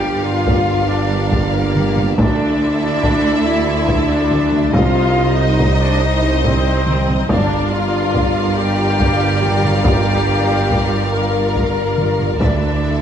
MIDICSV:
0, 0, Header, 1, 11, 480
1, 0, Start_track
1, 0, Key_signature, -2, "minor"
1, 0, Tempo, 426743
1, 2446, Time_signature, 12, 3, 24, 8
1, 14642, End_track
2, 0, Start_track
2, 0, Title_t, "Violin section"
2, 0, Program_c, 0, 48
2, 0, Note_on_c, 0, 77, 93
2, 2402, Note_off_c, 0, 77, 0
2, 2465, Note_on_c, 0, 76, 74
2, 5285, Note_off_c, 0, 76, 0
2, 5329, Note_on_c, 0, 75, 84
2, 8152, Note_off_c, 0, 75, 0
2, 8222, Note_on_c, 0, 77, 77
2, 13920, Note_off_c, 0, 77, 0
2, 13966, Note_on_c, 0, 76, 61
2, 14642, Note_off_c, 0, 76, 0
2, 14642, End_track
3, 0, Start_track
3, 0, Title_t, "Flute"
3, 0, Program_c, 1, 73
3, 0, Note_on_c, 1, 79, 97
3, 283, Note_on_c, 1, 77, 89
3, 300, Note_off_c, 1, 79, 0
3, 987, Note_off_c, 1, 77, 0
3, 994, Note_on_c, 1, 74, 86
3, 1725, Note_on_c, 1, 70, 88
3, 1742, Note_off_c, 1, 74, 0
3, 2445, Note_off_c, 1, 70, 0
3, 2452, Note_on_c, 1, 74, 82
3, 3156, Note_off_c, 1, 74, 0
3, 3167, Note_on_c, 1, 74, 91
3, 3869, Note_off_c, 1, 74, 0
3, 3881, Note_on_c, 1, 76, 92
3, 4340, Note_off_c, 1, 76, 0
3, 4616, Note_on_c, 1, 74, 88
3, 5322, Note_on_c, 1, 77, 99
3, 5339, Note_off_c, 1, 74, 0
3, 6042, Note_off_c, 1, 77, 0
3, 6057, Note_on_c, 1, 75, 77
3, 6543, Note_on_c, 1, 74, 90
3, 6559, Note_off_c, 1, 75, 0
3, 6771, Note_off_c, 1, 74, 0
3, 6783, Note_on_c, 1, 75, 88
3, 7251, Note_on_c, 1, 72, 89
3, 7268, Note_off_c, 1, 75, 0
3, 8200, Note_off_c, 1, 72, 0
3, 8206, Note_on_c, 1, 74, 80
3, 8667, Note_off_c, 1, 74, 0
3, 8691, Note_on_c, 1, 77, 82
3, 9641, Note_on_c, 1, 79, 98
3, 9658, Note_off_c, 1, 77, 0
3, 11069, Note_off_c, 1, 79, 0
3, 11076, Note_on_c, 1, 79, 92
3, 12177, Note_off_c, 1, 79, 0
3, 12494, Note_on_c, 1, 82, 86
3, 13898, Note_off_c, 1, 82, 0
3, 13954, Note_on_c, 1, 74, 73
3, 14642, Note_off_c, 1, 74, 0
3, 14642, End_track
4, 0, Start_track
4, 0, Title_t, "Violin section"
4, 0, Program_c, 2, 48
4, 0, Note_on_c, 2, 67, 82
4, 0, Note_on_c, 2, 74, 90
4, 2398, Note_off_c, 2, 74, 0
4, 2399, Note_off_c, 2, 67, 0
4, 2426, Note_on_c, 2, 69, 62
4, 2436, Note_on_c, 2, 74, 67
4, 5266, Note_off_c, 2, 69, 0
4, 5271, Note_off_c, 2, 74, 0
4, 5329, Note_on_c, 2, 72, 67
4, 5332, Note_on_c, 2, 75, 67
4, 8152, Note_off_c, 2, 72, 0
4, 8153, Note_off_c, 2, 75, 0
4, 8209, Note_on_c, 2, 74, 73
4, 8215, Note_on_c, 2, 70, 70
4, 13914, Note_off_c, 2, 74, 0
4, 13917, Note_off_c, 2, 70, 0
4, 13934, Note_on_c, 2, 74, 48
4, 13937, Note_off_c, 2, 74, 0
4, 13937, Note_on_c, 2, 74, 51
4, 14642, Note_off_c, 2, 74, 0
4, 14642, End_track
5, 0, Start_track
5, 0, Title_t, "String section"
5, 0, Program_c, 3, 48
5, 0, Note_on_c, 3, 55, 88
5, 0, Note_on_c, 3, 65, 88
5, 0, Note_on_c, 3, 70, 92
5, 0, Note_on_c, 3, 74, 96
5, 2397, Note_off_c, 3, 70, 0
5, 2399, Note_off_c, 3, 55, 0
5, 2399, Note_off_c, 3, 74, 0
5, 2402, Note_off_c, 3, 65, 0
5, 2457, Note_on_c, 3, 74, 83
5, 2458, Note_on_c, 3, 64, 87
5, 2463, Note_on_c, 3, 57, 83
5, 2469, Note_on_c, 3, 69, 84
5, 5281, Note_off_c, 3, 74, 0
5, 5317, Note_on_c, 3, 72, 82
5, 5321, Note_on_c, 3, 75, 86
5, 5322, Note_on_c, 3, 63, 86
5, 5323, Note_on_c, 3, 55, 86
5, 5326, Note_off_c, 3, 64, 0
5, 5329, Note_off_c, 3, 57, 0
5, 5332, Note_off_c, 3, 69, 0
5, 8191, Note_off_c, 3, 72, 0
5, 8193, Note_off_c, 3, 63, 0
5, 8193, Note_off_c, 3, 75, 0
5, 8194, Note_off_c, 3, 55, 0
5, 8221, Note_on_c, 3, 74, 82
5, 8223, Note_on_c, 3, 65, 77
5, 8223, Note_on_c, 3, 70, 81
5, 8228, Note_on_c, 3, 55, 86
5, 13923, Note_off_c, 3, 55, 0
5, 13958, Note_off_c, 3, 74, 0
5, 13960, Note_on_c, 3, 57, 70
5, 13963, Note_on_c, 3, 69, 69
5, 13965, Note_on_c, 3, 64, 63
5, 13966, Note_off_c, 3, 65, 0
5, 13966, Note_off_c, 3, 70, 0
5, 13971, Note_on_c, 3, 74, 70
5, 14642, Note_off_c, 3, 57, 0
5, 14642, Note_off_c, 3, 64, 0
5, 14642, Note_off_c, 3, 69, 0
5, 14642, Note_off_c, 3, 74, 0
5, 14642, End_track
6, 0, Start_track
6, 0, Title_t, "French horn section"
6, 0, Program_c, 4, 60
6, 0, Note_on_c, 4, 67, 108
6, 274, Note_on_c, 4, 65, 108
6, 278, Note_off_c, 4, 67, 0
6, 989, Note_on_c, 4, 62, 96
6, 997, Note_off_c, 4, 65, 0
6, 1716, Note_off_c, 4, 62, 0
6, 1739, Note_on_c, 4, 58, 99
6, 2446, Note_on_c, 4, 62, 102
6, 2457, Note_off_c, 4, 58, 0
6, 3146, Note_off_c, 4, 62, 0
6, 3159, Note_on_c, 4, 62, 103
6, 3865, Note_off_c, 4, 62, 0
6, 3883, Note_on_c, 4, 64, 106
6, 4591, Note_on_c, 4, 62, 110
6, 4603, Note_off_c, 4, 64, 0
6, 5300, Note_off_c, 4, 62, 0
6, 5314, Note_on_c, 4, 65, 125
6, 6035, Note_on_c, 4, 63, 94
6, 6038, Note_off_c, 4, 65, 0
6, 6518, Note_off_c, 4, 63, 0
6, 6540, Note_on_c, 4, 62, 108
6, 6760, Note_on_c, 4, 63, 110
6, 6770, Note_off_c, 4, 62, 0
6, 7217, Note_on_c, 4, 60, 110
6, 7237, Note_off_c, 4, 63, 0
6, 8003, Note_off_c, 4, 60, 0
6, 8194, Note_on_c, 4, 62, 112
6, 8661, Note_off_c, 4, 62, 0
6, 8678, Note_on_c, 4, 65, 109
6, 9627, Note_on_c, 4, 67, 116
6, 9631, Note_off_c, 4, 65, 0
6, 11044, Note_off_c, 4, 67, 0
6, 11066, Note_on_c, 4, 67, 110
6, 12478, Note_off_c, 4, 67, 0
6, 12495, Note_on_c, 4, 70, 98
6, 13914, Note_off_c, 4, 70, 0
6, 13959, Note_on_c, 4, 62, 83
6, 14642, Note_off_c, 4, 62, 0
6, 14642, End_track
7, 0, Start_track
7, 0, Title_t, "Viola section"
7, 0, Program_c, 5, 48
7, 0, Note_on_c, 5, 67, 83
7, 250, Note_off_c, 5, 67, 0
7, 276, Note_on_c, 5, 65, 86
7, 998, Note_off_c, 5, 65, 0
7, 999, Note_on_c, 5, 62, 75
7, 1717, Note_on_c, 5, 58, 78
7, 1721, Note_off_c, 5, 62, 0
7, 2431, Note_off_c, 5, 58, 0
7, 2454, Note_on_c, 5, 62, 82
7, 3147, Note_off_c, 5, 62, 0
7, 3160, Note_on_c, 5, 62, 91
7, 3866, Note_off_c, 5, 62, 0
7, 3883, Note_on_c, 5, 64, 90
7, 4589, Note_off_c, 5, 64, 0
7, 4610, Note_on_c, 5, 62, 82
7, 5313, Note_on_c, 5, 65, 99
7, 5324, Note_off_c, 5, 62, 0
7, 6023, Note_off_c, 5, 65, 0
7, 6047, Note_on_c, 5, 63, 84
7, 6524, Note_off_c, 5, 63, 0
7, 6529, Note_on_c, 5, 62, 86
7, 6764, Note_off_c, 5, 62, 0
7, 6774, Note_on_c, 5, 63, 78
7, 7243, Note_off_c, 5, 63, 0
7, 7243, Note_on_c, 5, 60, 94
7, 8196, Note_off_c, 5, 60, 0
7, 8203, Note_on_c, 5, 62, 90
7, 8666, Note_off_c, 5, 62, 0
7, 8686, Note_on_c, 5, 65, 97
7, 9628, Note_on_c, 5, 67, 92
7, 9635, Note_off_c, 5, 65, 0
7, 11059, Note_off_c, 5, 67, 0
7, 11073, Note_on_c, 5, 67, 96
7, 12482, Note_off_c, 5, 67, 0
7, 12505, Note_on_c, 5, 70, 78
7, 13919, Note_off_c, 5, 70, 0
7, 13966, Note_on_c, 5, 62, 65
7, 14642, Note_off_c, 5, 62, 0
7, 14642, End_track
8, 0, Start_track
8, 0, Title_t, "Cello section"
8, 0, Program_c, 6, 48
8, 0, Note_on_c, 6, 43, 93
8, 2400, Note_off_c, 6, 43, 0
8, 2449, Note_on_c, 6, 38, 77
8, 5277, Note_off_c, 6, 38, 0
8, 5320, Note_on_c, 6, 36, 77
8, 8193, Note_off_c, 6, 36, 0
8, 8208, Note_on_c, 6, 43, 71
8, 13914, Note_off_c, 6, 43, 0
8, 13958, Note_on_c, 6, 38, 54
8, 14642, Note_off_c, 6, 38, 0
8, 14642, End_track
9, 0, Start_track
9, 0, Title_t, "Double bass section"
9, 0, Program_c, 7, 48
9, 0, Note_on_c, 7, 31, 98
9, 2400, Note_off_c, 7, 31, 0
9, 2450, Note_on_c, 7, 38, 74
9, 5278, Note_off_c, 7, 38, 0
9, 5317, Note_on_c, 7, 36, 88
9, 8191, Note_off_c, 7, 36, 0
9, 8211, Note_on_c, 7, 31, 84
9, 13915, Note_off_c, 7, 31, 0
9, 13954, Note_on_c, 7, 38, 60
9, 14642, Note_off_c, 7, 38, 0
9, 14642, End_track
10, 0, Start_track
10, 0, Title_t, "Tuba"
10, 0, Program_c, 8, 58
10, 0, Note_on_c, 8, 31, 101
10, 2397, Note_off_c, 8, 31, 0
10, 2443, Note_on_c, 8, 38, 74
10, 5320, Note_on_c, 8, 36, 88
10, 5337, Note_off_c, 8, 38, 0
10, 8014, Note_off_c, 8, 36, 0
10, 8206, Note_on_c, 8, 31, 87
10, 13912, Note_off_c, 8, 31, 0
10, 13951, Note_on_c, 8, 38, 60
10, 14642, Note_off_c, 8, 38, 0
10, 14642, End_track
11, 0, Start_track
11, 0, Title_t, "Taiko and cinematic ensemble drums"
11, 521, Note_on_c, 9, 41, 82
11, 633, Note_off_c, 9, 41, 0
11, 1489, Note_on_c, 9, 41, 77
11, 1602, Note_off_c, 9, 41, 0
11, 1969, Note_on_c, 9, 47, 56
11, 2081, Note_off_c, 9, 47, 0
11, 2216, Note_on_c, 9, 47, 52
11, 2328, Note_off_c, 9, 47, 0
11, 2458, Note_on_c, 9, 41, 102
11, 2570, Note_off_c, 9, 41, 0
11, 3413, Note_on_c, 9, 41, 83
11, 3525, Note_off_c, 9, 41, 0
11, 4367, Note_on_c, 9, 41, 81
11, 4480, Note_off_c, 9, 41, 0
11, 4855, Note_on_c, 9, 47, 62
11, 4968, Note_off_c, 9, 47, 0
11, 5089, Note_on_c, 9, 47, 52
11, 5202, Note_off_c, 9, 47, 0
11, 5326, Note_on_c, 9, 41, 104
11, 5438, Note_off_c, 9, 41, 0
11, 6291, Note_on_c, 9, 41, 74
11, 6403, Note_off_c, 9, 41, 0
11, 7248, Note_on_c, 9, 41, 77
11, 7360, Note_off_c, 9, 41, 0
11, 7727, Note_on_c, 9, 47, 59
11, 7840, Note_off_c, 9, 47, 0
11, 7969, Note_on_c, 9, 47, 50
11, 8081, Note_off_c, 9, 47, 0
11, 8207, Note_on_c, 9, 41, 100
11, 8320, Note_off_c, 9, 41, 0
11, 9161, Note_on_c, 9, 41, 84
11, 9273, Note_off_c, 9, 41, 0
11, 10122, Note_on_c, 9, 41, 79
11, 10235, Note_off_c, 9, 41, 0
11, 10599, Note_on_c, 9, 47, 51
11, 10711, Note_off_c, 9, 47, 0
11, 10844, Note_on_c, 9, 47, 51
11, 10957, Note_off_c, 9, 47, 0
11, 11072, Note_on_c, 9, 41, 101
11, 11184, Note_off_c, 9, 41, 0
11, 12029, Note_on_c, 9, 41, 70
11, 12141, Note_off_c, 9, 41, 0
11, 12988, Note_on_c, 9, 41, 65
11, 13101, Note_off_c, 9, 41, 0
11, 13474, Note_on_c, 9, 47, 50
11, 13586, Note_off_c, 9, 47, 0
11, 13715, Note_on_c, 9, 47, 42
11, 13828, Note_off_c, 9, 47, 0
11, 13950, Note_on_c, 9, 41, 86
11, 14062, Note_off_c, 9, 41, 0
11, 14642, End_track
0, 0, End_of_file